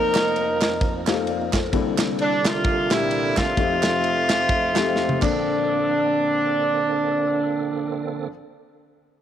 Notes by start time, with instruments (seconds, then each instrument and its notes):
Already playing: upright piano F1 F2 A#3 C4 D#4 F4 A#4, tonewheel organ F3 A#3 C4 D#4 A#4, horn section D#4 A#4
0.15 snare, clap, ride
0.36 ride
0.61 snare, clap, ride
0.81 kick, ride
1.06 upright piano A#3 C4 D#4 F4 G4, snare, clap, ride
1.13 upright piano A4
1.27 upright piano D5 F5, ride
1.53 upright piano A4 C5, kick, snare, clap, ride
1.73 upright piano C2 C3 A#3 C4 D4 E4 A4, tonewheel organ D3 G3 C4 D4 A4, kick, ride
1.98 snare, clap, ride
2.19 horn section D4, ride
2.45 horn section A3 A#3 F4, snare, clap, ride
2.64 kick, ride
2.91 upright piano A#2 C4 D4 E4 G4, horn section G3 A#3 E4, snare, clap, ride
3.11 ride
3.37 horn section A3 C4 F4, kick, snare, clap, ride
3.57 upright piano F1 F2 A3 C4 D#4 F4 G4, tonewheel organ F3 A3 C4 D#4 F#4, kick, ride
3.62 tonewheel organ G4
3.83 snare, clap, ride
4.04 ride
4.30 snare, clap, ride
4.49 kick, ride
4.75 upright piano A3 C4 D#4 F4 G4, snare, clap, ride
4.96 snare
5.09 high tom
5.20 upright piano A#1 A#3 C4 D4, tonewheel organ D3 A#3 C4 A4, horn section D4, kick, clap, crash
5.24 upright piano A4